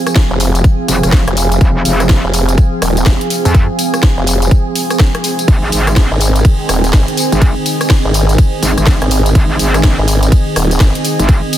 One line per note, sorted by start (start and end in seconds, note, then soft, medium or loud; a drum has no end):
0.00 5.44 F3 medium
0.00 5.44 C4 medium
0.00 11.58 C4 medium
0.00 11.58 G#4 medium
0.00 6.92 F5 medium
0.00 11.58 G#5 medium
0.07 cross-stick medium
0.07 closed hi-hat medium
0.07 tambourine soft
0.16 kick loud
0.16 snare loud
0.16 closed hi-hat medium
0.31 0.63 F1 loud
0.40 open hi-hat loud
0.40 tambourine medium
0.55 closed hi-hat medium
0.55 tambourine soft
0.64 kick loud
0.64 closed hi-hat medium
0.64 tambourine soft
0.88 1.01 F1 medium
0.88 open hi-hat loud
0.88 tambourine medium
1.03 1.25 F1 loud
1.03 cross-stick medium
1.03 closed hi-hat medium
1.03 tambourine soft
1.12 kick loud
1.12 snare loud
1.12 closed hi-hat medium
1.12 tambourine soft
1.28 1.59 F1 loud
1.28 cross-stick medium
1.28 closed hi-hat medium
1.37 open hi-hat loud
1.37 tambourine medium
1.52 closed hi-hat medium
1.52 tambourine soft
1.61 1.84 F1 loud
1.61 kick loud
1.61 closed hi-hat medium
1.61 tambourine soft
1.85 2.22 F1 loud
1.85 open hi-hat loud
1.85 tambourine medium
2.00 cross-stick medium
2.00 closed hi-hat medium
2.00 tambourine soft
2.09 kick loud
2.09 snare loud
2.09 closed hi-hat medium
2.09 tambourine soft
2.24 2.56 F1 loud
2.34 open hi-hat medium
2.34 tambourine medium
2.49 closed hi-hat medium
2.49 tambourine soft
2.58 kick loud
2.58 closed hi-hat medium
2.58 tambourine soft
2.82 3.05 D#1 medium
2.82 cross-stick medium
2.82 open hi-hat loud
2.82 tambourine medium
2.97 closed hi-hat medium
2.97 tambourine soft
3.06 3.19 F1 loud
3.06 kick loud
3.06 snare loud
3.06 closed hi-hat medium
3.21 closed hi-hat medium
3.30 open hi-hat loud
3.30 tambourine medium
3.45 3.67 F2 medium
3.45 closed hi-hat medium
3.45 tambourine soft
3.54 kick loud
3.54 closed hi-hat medium
3.79 open hi-hat loud
3.79 tambourine medium
3.94 cross-stick medium
3.94 closed hi-hat medium
3.94 tambourine soft
4.03 kick loud
4.03 snare loud
4.03 closed hi-hat medium
4.18 4.50 F1 loud
4.27 open hi-hat loud
4.27 tambourine medium
4.42 closed hi-hat medium
4.42 tambourine soft
4.51 kick loud
4.51 closed hi-hat medium
4.51 tambourine soft
4.75 open hi-hat loud
4.75 tambourine medium
4.90 cross-stick medium
4.90 closed hi-hat medium
4.90 tambourine soft
4.99 kick loud
4.99 snare loud
4.99 closed hi-hat medium
4.99 tambourine soft
5.15 cross-stick medium
5.15 closed hi-hat medium
5.24 open hi-hat loud
5.24 tambourine medium
5.39 closed hi-hat medium
5.39 tambourine soft
5.48 5.71 G#1 loud
5.48 11.58 D#3 medium
5.48 11.58 C4 medium
5.48 kick loud
5.48 closed hi-hat medium
5.48 ride medium
5.48 tambourine soft
5.72 6.09 G#1 loud
5.72 open hi-hat loud
5.72 tambourine medium
5.87 cross-stick medium
5.87 closed hi-hat soft
5.87 tambourine soft
5.96 kick loud
5.96 snare loud
5.96 closed hi-hat medium
5.96 ride medium
5.96 tambourine soft
6.04 11.58 D#5 medium
6.11 6.43 G#1 loud
6.21 open hi-hat medium
6.21 tambourine medium
6.36 closed hi-hat medium
6.36 tambourine soft
6.45 kick loud
6.45 closed hi-hat medium
6.45 ride medium
6.45 tambourine soft
6.69 6.92 D#1 medium
6.69 cross-stick medium
6.69 open hi-hat loud
6.69 tambourine medium
6.84 closed hi-hat medium
6.84 tambourine soft
6.93 7.06 G#1 loud
6.93 kick loud
6.93 snare loud
6.93 closed hi-hat medium
6.93 ride medium
7.08 closed hi-hat medium
7.17 open hi-hat loud
7.17 tambourine medium
7.32 7.54 G#1 loud
7.32 closed hi-hat medium
7.32 tambourine soft
7.42 kick loud
7.42 closed hi-hat medium
7.42 ride medium
7.42 tambourine soft
7.66 open hi-hat loud
7.66 tambourine medium
7.81 cross-stick medium
7.81 closed hi-hat medium
7.81 tambourine soft
7.90 kick loud
7.90 snare loud
7.90 closed hi-hat medium
7.90 ride medium
7.90 tambourine soft
8.05 8.37 G#1 loud
8.14 open hi-hat medium
8.14 tambourine medium
8.29 closed hi-hat medium
8.29 tambourine soft
8.38 kick loud
8.38 closed hi-hat medium
8.38 ride medium
8.38 tambourine soft
8.63 8.75 G#1 loud
8.63 open hi-hat loud
8.63 tambourine medium
8.78 8.99 G#1 loud
8.78 cross-stick medium
8.78 closed hi-hat medium
8.78 tambourine soft
8.87 kick loud
8.87 snare loud
8.87 closed hi-hat medium
8.87 ride medium
8.87 tambourine soft
9.02 9.34 G#1 loud
9.02 cross-stick medium
9.02 closed hi-hat medium
9.11 open hi-hat medium
9.11 tambourine medium
9.26 closed hi-hat medium
9.26 tambourine soft
9.35 9.58 G#1 loud
9.35 kick loud
9.35 closed hi-hat medium
9.35 ride medium
9.35 tambourine soft
9.59 9.96 G#1 loud
9.59 open hi-hat loud
9.59 tambourine medium
9.74 cross-stick medium
9.74 closed hi-hat medium
9.74 tambourine soft
9.83 kick loud
9.83 snare loud
9.83 closed hi-hat medium
9.83 ride medium
9.99 10.30 G#1 loud
10.08 open hi-hat medium
10.08 tambourine medium
10.23 closed hi-hat medium
10.23 tambourine soft
10.32 kick loud
10.32 closed hi-hat medium
10.32 ride medium
10.32 tambourine soft
10.56 10.79 D#1 loud
10.56 cross-stick medium
10.56 open hi-hat loud
10.56 tambourine medium
10.71 closed hi-hat medium
10.71 tambourine soft
10.80 10.93 G#1 loud
10.80 kick loud
10.80 snare loud
10.80 closed hi-hat medium
10.80 ride medium
10.95 closed hi-hat medium
11.05 open hi-hat medium
11.05 tambourine medium
11.19 11.41 G#1 loud
11.19 closed hi-hat medium
11.19 tambourine soft
11.29 kick loud
11.29 closed hi-hat medium
11.29 ride medium
11.29 tambourine soft
11.53 open hi-hat loud
11.53 tambourine medium